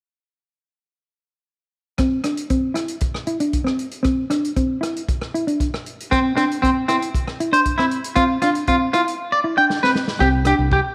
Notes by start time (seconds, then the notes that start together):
1.98 C4, kick, cross-stick, closed hi-hat
2.24 D4, cross-stick, closed hi-hat
2.37 closed hi-hat
2.50 C4, kick, closed hi-hat
2.74 E4, cross-stick, closed hi-hat
2.88 closed hi-hat
3.00 kick, closed hi-hat
3.14 cross-stick
3.27 E4, closed hi-hat
3.40 D4, closed hi-hat
3.53 kick, closed hi-hat
3.64 C4, cross-stick
3.79 closed hi-hat
3.91 closed hi-hat
4.03 C4, kick, cross-stick, closed hi-hat
4.30 D4, cross-stick, closed hi-hat
4.45 closed hi-hat
4.56 C4, kick, closed hi-hat
4.81 E4, cross-stick, closed hi-hat
4.96 closed hi-hat
5.08 kick, closed hi-hat
5.21 cross-stick
5.34 E4, closed hi-hat
5.47 D4, closed hi-hat
5.60 kick, closed hi-hat
5.74 cross-stick
5.86 closed hi-hat
6.00 closed hi-hat
6.11 C4, kick, cross-stick, closed hi-hat
6.36 C4 D4, cross-stick, closed hi-hat
6.51 closed hi-hat
6.62 C4, kick, closed hi-hat
6.88 C4 E4, cross-stick, closed hi-hat
7.02 closed hi-hat
7.14 kick, closed hi-hat
7.27 cross-stick
7.40 E4, closed hi-hat
7.53 D4 C5, closed hi-hat
7.65 kick, closed hi-hat
7.78 C4 E4, cross-stick
7.91 closed hi-hat
8.04 closed hi-hat
8.16 C4 F4, kick, cross-stick, closed hi-hat
8.42 D4 F4, cross-stick, closed hi-hat
8.55 closed hi-hat
8.67 C4 F4, kick, closed hi-hat
8.93 E4 F4, cross-stick, closed hi-hat
9.08 closed hi-hat
9.32 D5
9.44 E4
9.58 D4 G5
9.70 snare
9.83 C4 B4, snare
9.95 snare
10.08 snare
10.20 C2 C4 G4, kick, cross-stick
10.45 D4 G4, cross-stick, closed hi-hat
10.59 C2
10.72 G4, kick